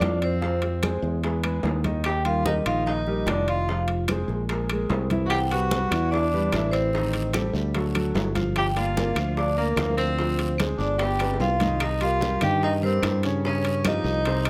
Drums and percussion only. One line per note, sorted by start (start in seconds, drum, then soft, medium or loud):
0.01 high bongo medium
0.01 low bongo medium
0.01 high conga medium
0.01 high timbale medium
0.01 low timbale medium
0.01 claves medium
0.22 high conga soft
0.22 high timbale medium
0.42 high bongo medium
0.42 high conga soft
0.62 high bongo soft
0.62 high conga soft
0.62 high timbale medium
0.83 high bongo soft
0.83 high conga medium
0.83 high timbale medium
0.83 low timbale medium
0.83 claves medium
1.04 high bongo soft
1.04 high conga soft
1.23 high bongo medium
1.23 high conga soft
1.23 high timbale medium
1.44 high conga soft
1.44 high timbale medium
1.44 claves medium
1.63 high bongo medium
1.63 low bongo medium
1.63 high conga soft
1.63 low timbale medium
1.84 high bongo soft
1.84 high conga medium
1.84 high timbale medium
2.04 high bongo medium
2.04 high conga soft
2.04 high timbale medium
2.04 claves medium
2.25 high conga soft
2.25 high timbale medium
2.46 high bongo medium
2.46 high conga medium
2.46 low timbale medium
2.66 high conga soft
2.66 high timbale loud
2.66 claves medium
2.86 high bongo medium
2.86 high conga soft
3.06 high conga soft
3.27 high bongo medium
3.27 low bongo medium
3.27 high conga medium
3.27 high timbale medium
3.27 low timbale medium
3.27 claves medium
3.48 high conga soft
3.48 high timbale medium
3.68 high bongo medium
3.68 high conga soft
3.88 high bongo soft
3.88 high conga soft
3.88 high timbale medium
4.08 high bongo medium
4.08 high conga medium
4.08 high timbale medium
4.08 low timbale medium
4.08 claves medium
4.29 high bongo soft
4.29 high conga soft
4.49 high bongo medium
4.49 high conga soft
4.49 high timbale medium
4.69 high conga soft
4.69 high timbale medium
4.69 claves medium
4.90 high bongo medium
4.90 low bongo medium
4.90 high conga soft
4.90 low timbale medium
5.10 high bongo soft
5.10 high conga medium
5.10 high timbale medium
5.30 high bongo medium
5.30 high timbale medium
5.30 long guiro medium
5.30 claves medium
5.51 high conga soft
5.51 high timbale medium
5.71 high bongo medium
5.71 high conga medium
5.71 low timbale medium
5.71 short guiro medium
5.91 high conga soft
5.91 high timbale loud
5.91 short guiro medium
5.91 claves medium
6.12 high bongo medium
6.12 high conga soft
6.12 long guiro medium
6.33 high conga soft
6.52 high bongo medium
6.52 low bongo medium
6.52 high conga medium
6.52 high timbale medium
6.52 low timbale medium
6.52 short guiro medium
6.52 claves medium
6.73 high conga soft
6.73 high timbale medium
6.73 short guiro medium
6.93 high bongo medium
6.93 high conga soft
6.93 long guiro medium
7.13 high bongo soft
7.13 high conga soft
7.13 high timbale medium
7.33 high bongo medium
7.33 high conga medium
7.33 high timbale medium
7.33 low timbale medium
7.33 short guiro medium
7.33 claves medium
7.55 high bongo soft
7.55 high conga soft
7.55 short guiro medium
7.74 high bongo medium
7.74 high conga soft
7.74 high timbale medium
7.74 long guiro medium
7.95 high conga soft
7.95 high timbale medium
7.95 claves medium
8.15 high bongo medium
8.15 low bongo medium
8.15 high conga soft
8.15 low timbale medium
8.15 short guiro medium
8.35 high bongo soft
8.35 high conga medium
8.35 high timbale medium
8.35 short guiro medium
8.56 high bongo medium
8.56 high conga soft
8.56 high timbale medium
8.56 long guiro medium
8.56 claves medium
8.76 high conga soft
8.76 high timbale medium
8.97 high bongo medium
8.97 high conga medium
8.97 low timbale medium
8.97 short guiro medium
9.16 high conga soft
9.16 high timbale medium
9.16 short guiro medium
9.16 claves medium
9.37 high bongo medium
9.37 high conga soft
9.37 long guiro medium
9.58 high conga soft
9.77 high bongo medium
9.77 low bongo medium
9.77 high conga medium
9.77 high timbale medium
9.77 low timbale medium
9.77 short guiro medium
9.77 claves medium
9.98 high conga soft
9.98 high timbale medium
9.98 short guiro medium
10.19 high bongo medium
10.19 high conga soft
10.19 long guiro medium
10.39 high bongo soft
10.39 high conga soft
10.39 high timbale medium
10.58 high bongo medium
10.58 high conga medium
10.58 high timbale medium
10.58 low timbale medium
10.58 short guiro medium
10.58 claves medium
10.80 high bongo soft
10.80 high conga soft
10.80 short guiro medium
10.99 high bongo medium
10.99 high conga soft
10.99 high timbale medium
10.99 long guiro medium
11.19 high bongo medium
11.19 high conga soft
11.19 high timbale medium
11.19 claves medium
11.34 high bongo medium
11.40 high conga soft
11.40 low timbale medium
11.40 short guiro medium
11.60 low bongo medium
11.60 high conga medium
11.60 high timbale medium
11.60 short guiro medium
11.80 high bongo medium
11.80 high conga soft
11.80 high timbale medium
11.80 long guiro medium
11.80 claves medium
12.01 high conga soft
12.01 high timbale medium
12.21 high bongo medium
12.21 high conga medium
12.21 low timbale medium
12.21 short guiro medium
12.41 high conga soft
12.41 low conga medium
12.41 high timbale medium
12.41 short guiro medium
12.41 claves medium
12.63 high bongo medium
12.63 high conga soft
12.63 long guiro medium
12.83 high conga soft
13.03 high bongo medium
13.03 low bongo medium
13.03 high conga medium
13.03 high timbale medium
13.03 low timbale medium
13.03 short guiro medium
13.03 claves medium
13.23 high conga soft
13.23 high timbale medium
13.23 short guiro medium
13.45 high bongo medium
13.45 high conga soft
13.45 long guiro medium
13.65 high bongo soft
13.65 high conga soft
13.65 high timbale medium
13.84 high bongo medium
13.84 high conga medium
13.84 high timbale loud
13.84 low timbale medium
13.84 short guiro medium
13.84 claves medium
14.05 high bongo soft
14.05 high conga soft
14.05 short guiro medium
14.25 high bongo medium
14.25 high conga soft
14.25 high timbale medium
14.25 long guiro medium
14.45 high conga soft
14.45 high timbale medium
14.45 claves medium